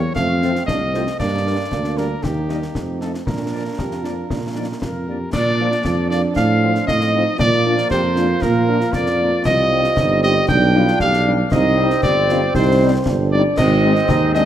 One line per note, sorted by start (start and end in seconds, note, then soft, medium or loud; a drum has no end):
0.00 0.16 G3 medium
0.00 0.16 A#3 medium
0.00 0.12 C#5 medium
0.15 0.59 F2 medium
0.15 0.27 A3 medium
0.15 1.16 A3 medium
0.15 1.16 C4 medium
0.15 0.64 F5 loud
0.15 concert bass drum medium
0.15 snare medium
0.42 0.52 A3 medium
0.42 0.66 C4 medium
0.42 0.52 C4 medium
0.42 0.52 F4 medium
0.42 0.52 A4 medium
0.42 0.52 C5 medium
0.42 snare soft
0.55 snare soft
0.66 1.07 C2 medium
0.66 0.79 D4 medium
0.66 1.15 D#5 medium
0.66 concert bass drum medium
0.66 snare medium
0.94 1.04 A3 soft
0.94 1.05 C4 soft
0.94 1.04 C4 medium
0.94 1.04 F4 medium
0.94 1.03 A4 medium
0.94 1.03 C5 medium
0.94 snare soft
1.07 snare medium
1.18 1.63 G2 medium
1.18 1.67 A#3 medium
1.18 2.75 A#3 medium
1.18 2.23 D4 medium
1.18 1.99 D5 medium
1.18 concert bass drum medium
1.18 snare medium
1.18 crash soft
1.46 1.56 G3 soft
1.46 1.56 A#3 medium
1.46 1.55 D4 medium
1.46 1.55 A#4 medium
1.46 1.55 D5 medium
1.71 2.14 D2 medium
1.71 2.43 A#3 medium
1.71 concert bass drum medium
1.71 snare medium
1.84 snare soft
1.97 2.07 G3 soft
1.97 2.07 A#3 soft
1.97 2.07 D4 soft
1.97 2.07 A#4 soft
1.97 2.25 A#4 medium
1.97 2.07 D5 soft
1.97 snare medium
2.23 2.66 D#2 medium
2.23 3.23 D#4 medium
2.23 3.00 G4 medium
2.23 concert bass drum medium
2.23 snare medium
2.49 2.58 G3 soft
2.49 2.58 A#3 soft
2.49 2.58 D#4 soft
2.49 2.59 A#4 soft
2.49 2.59 D#5 soft
2.49 snare soft
2.62 snare soft
2.75 3.18 F2 soft
2.75 3.27 A3 soft
2.75 3.23 C4 soft
2.75 concert bass drum medium
2.75 snare medium
3.00 3.10 F3 soft
3.00 3.10 A3 soft
3.00 3.10 D#4 soft
3.00 3.12 A4 medium
3.00 3.10 A4 soft
3.00 3.11 D#5 soft
3.00 snare soft
3.14 snare soft
3.26 3.70 A#2 medium
3.26 5.08 A#3 soft
3.26 3.70 D4 soft
3.26 5.08 D4 medium
3.26 4.77 A#4 medium
3.26 concert bass drum medium
3.26 snare soft
3.53 3.62 F3 soft
3.53 3.62 A#3 soft
3.53 3.62 D4 soft
3.53 3.62 A#4 soft
3.53 3.62 D5 soft
3.78 4.22 F2 soft
3.78 4.04 G4 soft
3.78 concert bass drum medium
3.78 snare medium
3.91 snare soft
4.03 4.14 F3 soft
4.03 4.14 A#3 soft
4.03 4.14 D4 soft
4.03 4.28 F4 soft
4.03 4.14 A#4 soft
4.03 4.13 D5 soft
4.03 snare soft
4.29 4.73 A#2 soft
4.29 4.41 D4 soft
4.29 concert bass drum medium
4.29 snare medium
4.56 4.65 F3 soft
4.56 4.65 A#3 soft
4.56 4.65 D4 soft
4.56 4.67 D#4 soft
4.56 4.65 A#4 soft
4.56 4.65 D5 soft
4.81 5.25 F2 medium
4.81 5.09 F4 soft
4.81 5.30 A#4 medium
4.81 5.07 A#4 soft
4.81 concert bass drum medium
4.81 snare medium
5.07 5.17 F3 soft
5.07 5.17 A#3 soft
5.07 5.17 D4 soft
5.07 5.33 G4 soft
5.07 5.17 A#4 soft
5.07 5.18 D5 soft
5.32 5.76 A#2 medium
5.32 7.35 F3 medium
5.32 6.32 D4 medium
5.32 6.06 D5 loud
5.32 6.09 D5 medium
5.32 concert bass drum medium
5.32 snare medium
5.32 crash soft
5.60 5.69 F3 medium
5.60 5.69 A#3 medium
5.60 5.69 F4 medium
5.72 snare soft
5.84 6.27 F2 medium
5.84 5.96 F4 medium
5.84 concert bass drum medium
5.84 snare medium
6.10 6.21 F3 medium
6.10 6.21 A#3 medium
6.10 6.89 D4 medium
6.10 6.20 F4 medium
6.10 6.22 D5 medium
6.10 snare medium
6.36 6.79 A2 medium
6.36 7.39 C4 medium
6.36 6.84 F5 medium
6.36 concert bass drum medium
6.36 snare medium
6.63 6.72 F3 medium
6.63 6.72 C4 medium
6.63 6.72 F4 medium
6.75 snare soft
6.87 7.27 A2 medium
6.87 7.12 C4 medium
6.87 7.35 D#5 medium
6.87 7.36 D#5 loud
6.87 concert bass drum medium
6.87 snare medium
7.01 snare medium
7.13 7.23 F3 medium
7.13 7.23 C4 medium
7.13 7.40 D#4 medium
7.13 7.23 F4 medium
7.38 7.82 A#2 medium
7.38 9.41 F3 medium
7.38 9.45 A#3 medium
7.38 7.90 F4 medium
7.38 7.91 D5 medium
7.38 7.87 D5 loud
7.38 concert bass drum medium
7.38 snare medium
7.66 7.75 A#3 medium
7.66 7.75 D4 medium
7.66 7.75 F4 medium
7.78 snare medium
7.90 8.34 F2 medium
7.90 8.02 G4 medium
7.90 8.44 C5 medium
7.90 8.39 C5 medium
7.90 concert bass drum medium
7.90 snare medium
8.16 8.26 A#3 medium
8.16 8.26 D4 medium
8.16 9.99 F4 medium
8.16 8.26 F4 medium
8.16 snare medium
8.42 8.86 A#2 medium
8.42 8.95 A#4 loud
8.42 8.94 A#4 medium
8.42 concert bass drum medium
8.42 snare medium
8.69 8.78 A#3 medium
8.69 8.78 D4 medium
8.69 8.78 F4 medium
8.81 snare soft
8.93 9.37 F2 medium
8.93 9.45 D5 medium
8.93 9.43 D5 medium
8.93 concert bass drum medium
8.93 snare medium
9.06 snare medium
9.20 9.29 A#3 medium
9.20 9.29 D4 medium
9.20 9.29 F4 medium
9.45 9.89 C2 medium
9.45 11.48 G3 medium
9.45 10.45 C4 medium
9.45 10.19 D#5 loud
9.45 10.19 D#5 medium
9.45 concert bass drum medium
9.45 snare medium
9.45 crash soft
9.72 9.81 G3 medium
9.72 9.81 C4 medium
9.72 9.81 D#4 medium
9.84 snare medium
9.97 10.40 G1 medium
9.97 10.23 D#4 medium
9.97 concert bass drum medium
9.97 snare medium
10.23 10.33 G3 medium
10.23 10.33 C4 medium
10.23 10.33 D#4 medium
10.23 10.51 G4 medium
10.23 10.35 D#5 medium
10.23 10.47 D#5 loud
10.23 snare medium
10.48 10.92 B1 loud
10.48 10.75 D4 medium
10.48 11.52 D4 medium
10.48 10.97 G5 loud
10.48 10.97 G5 medium
10.48 concert bass drum medium
10.48 snare medium
10.75 10.84 G3 medium
10.75 10.85 D4 medium
10.75 11.04 F4 medium
10.88 snare soft
11.00 11.43 B1 medium
11.00 11.27 G4 medium
11.00 11.48 F5 medium
11.00 11.32 F5 loud
11.00 concert bass drum medium
11.00 snare medium
11.13 snare medium
11.27 11.36 G3 medium
11.27 11.36 D4 medium
11.27 11.39 D4 medium
11.52 11.95 C2 medium
11.52 13.41 G3 medium
11.52 13.41 C4 loud
11.52 12.01 D#4 medium
11.52 11.99 D#5 medium
11.52 12.00 D#5 loud
11.52 concert bass drum medium
11.52 snare medium
11.78 11.87 G3 medium
11.78 11.87 C4 medium
11.78 11.88 D#4 medium
11.90 snare medium
12.03 12.47 G1 medium
12.03 12.16 G4 medium
12.03 12.51 D5 medium
12.03 12.51 D5 loud
12.03 concert bass drum medium
12.03 snare medium
12.29 12.39 G3 medium
12.29 12.39 C4 medium
12.29 12.39 D#4 medium
12.29 12.41 F4 medium
12.29 snare medium
12.55 12.98 C2 loud
12.55 12.87 D#4 medium
12.55 13.03 C5 medium
12.55 13.03 C5 loud
12.55 concert bass drum medium
12.55 snare medium
12.82 12.91 G3 medium
12.82 12.91 C4 medium
12.82 12.91 D#4 medium
13.06 13.45 G1 medium
13.06 13.59 D4 medium
13.06 concert bass drum medium
13.06 snare medium
13.31 13.42 G3 medium
13.31 13.42 C4 medium
13.31 13.42 D#4 medium
13.31 13.43 D5 loud
13.31 13.56 D5 medium
13.57 14.01 G#1 loud
13.57 14.45 G#3 medium
13.57 14.45 C4 loud
13.57 14.08 C4 medium
13.57 14.30 D#5 loud
13.57 14.31 D#5 medium
13.57 concert bass drum medium
13.57 snare medium
13.57 crash medium
13.84 13.93 G#3 medium
13.84 13.93 C4 medium
13.84 13.93 D#4 medium
13.95 snare soft
14.09 14.45 D#2 medium
14.09 14.33 D#4 medium
14.09 concert bass drum medium
14.09 snare medium
14.34 14.44 G#3 medium
14.34 14.45 C4 medium
14.34 14.45 D4 medium
14.34 14.44 D#4 medium
14.34 14.45 D#5 loud
14.34 snare medium